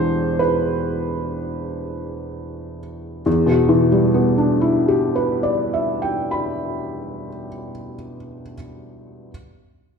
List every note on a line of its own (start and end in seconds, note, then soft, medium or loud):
0.00 3.22 E1 medium
0.00 3.21 E2 medium
0.00 3.21 E3 medium
0.00 3.22 D4 medium
0.00 3.22 G4 medium
0.00 0.40 C5 loud
0.39 2.78 B4 medium
3.26 7.28 E2 medium
3.46 7.48 B2 medium
3.69 7.71 E3 medium
3.92 7.94 G3 medium
4.14 8.16 B3 medium
4.38 8.40 D4 medium
4.61 8.53 E4 medium
4.88 8.54 G4 medium
5.16 8.54 B4 medium
5.43 8.54 D5 medium
5.74 8.55 E5 medium
6.02 8.54 G5 medium
6.31 8.54 B5 medium